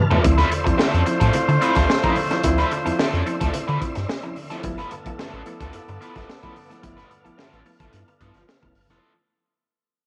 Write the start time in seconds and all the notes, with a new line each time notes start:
Already playing: B4 A5 F6
0.11 F3 B3 E4 A4, floor tom
0.23 D2 F3 A3 C4 E4 F4 C5 D5 C6 E6, muted overdriven electric guitar stroke, kick, closed hi-hat
0.38 F3 C4 E4 B4, snare, closed hi-hat
0.50 D3, muted overdriven electric guitar stroke, closed hi-hat
0.64 F2 F3 C4 E4, muted overdriven electric guitar stroke, kick, closed hi-hat
0.78 D3 F3 C4 E4 A4, snare
0.94 F2, closed hi-hat
1.06 F3 C4 E4, muted overdriven electric guitar stroke, closed hi-hat
1.20 A2 F3 C4 E4 A4, kick, closed hi-hat
1.33 D3 C4 E4, muted overdriven electric guitar stroke, closed hi-hat
1.48 D3, muted overdriven electric guitar stroke, closed hi-hat
1.61 F3 C4 E4 B4, closed hi-hat
1.75 D2 F3 C4 E4 A4, kick, snare, closed hi-hat
1.89 muted overdriven electric guitar stroke, snare
2.03 F3 C4 E4 B4, kick, closed hi-hat
2.16 D3, muted overdriven electric guitar stroke, open hi-hat
2.31 F3 C4 E4, muted overdriven electric guitar stroke, snare, closed hi-hat
2.44 D2 F3 C4 E4, muted overdriven electric guitar stroke, kick, closed hi-hat
2.58 F3 C4 E4 B4, snare, closed hi-hat
2.71 D3, muted overdriven electric guitar stroke, closed hi-hat
2.85 F2 F3 C4 E4, muted overdriven electric guitar stroke, closed hi-hat
2.99 D3 F3 C4 E4 A4, snare
3.13 F2, closed hi-hat
3.25 F3 C4 E4, muted overdriven electric guitar stroke, closed hi-hat
3.40 D2 F3 C4 E4 A4, kick, closed hi-hat
3.53 D3 C4 E4, muted overdriven electric guitar stroke, closed hi-hat
3.68 D3 F3 C4 E4 B4, closed hi-hat
3.81 C4 E4, muted overdriven electric guitar stroke, kick, closed hi-hat
3.95 G2, muted overdriven electric guitar stroke, snare, closed hi-hat
4.09 muted overdriven electric guitar stroke, snare
4.23 F3 C4 E4, muted overdriven electric guitar stroke, closed hi-hat
4.36 D3, open hi-hat
4.50 F3 C4 E4 A4, snare, closed hi-hat
4.63 G1 F3 A3 B3 E4 A4 B4 D5 F5 A5, muted overdriven electric guitar stroke, kick, closed hi-hat
4.78 F3 B3 E4 B4, snare, closed hi-hat
4.91 G2 D3, muted overdriven electric guitar stroke, closed hi-hat
5.05 A1 F3 A3 B3 E4, muted overdriven electric guitar stroke, kick, closed hi-hat
5.18 G2 D3 F3 B3 E4 A4, snare
5.33 A1
5.45 F3 A3 B3 E4, muted overdriven electric guitar stroke, closed hi-hat
5.60 D2 F3 B3 E4 A4, kick, closed hi-hat
5.73 G2 B3 E4, muted overdriven electric guitar stroke, closed hi-hat
5.87 G2 D3, muted overdriven electric guitar stroke, closed hi-hat
6.01 F3 B3 E4 B4, closed hi-hat
6.15 G1 F3 B3 E4 A4, kick, snare, closed hi-hat
6.29 muted overdriven electric guitar stroke, snare
6.43 F3 A3 B3 E4 B4, kick, closed hi-hat
6.56 G2 D3, muted overdriven electric guitar stroke, open hi-hat
6.70 F3 A3 B3 E4, muted overdriven electric guitar stroke, snare, closed hi-hat
6.81 G1 F3 A3 B3 E4 F6, muted overdriven electric guitar stroke, kick, closed hi-hat
6.97 F3 B3 E4 B4, snare, closed hi-hat
7.10 G2 D3, muted overdriven electric guitar stroke, closed hi-hat
7.25 A1 F3 A3 B3 E4, muted overdriven electric guitar stroke, closed hi-hat
7.38 G2 D3 F3 B3 E4 A4, snare
7.53 A1, closed hi-hat
7.65 F3 A3 B3 E4, muted overdriven electric guitar stroke, open hi-hat
7.80 G1 F3 B3 E4 A4, kick, closed hi-hat
7.92 G2 B3 E4, closed hi-hat
8.07 G2 D3, muted overdriven electric guitar stroke, closed hi-hat
8.20 G2 F3 B3 E4 A4, kick, closed hi-hat
8.34 G1, muted overdriven electric guitar stroke, snare, closed hi-hat
8.48 muted overdriven electric guitar stroke, snare
8.62 F1 F3 A3 B3 E4, muted overdriven electric guitar stroke, kick
8.75 G1 G2 D3, open hi-hat
8.89 F1 F3 A3 B3 E4 A4, snare, closed hi-hat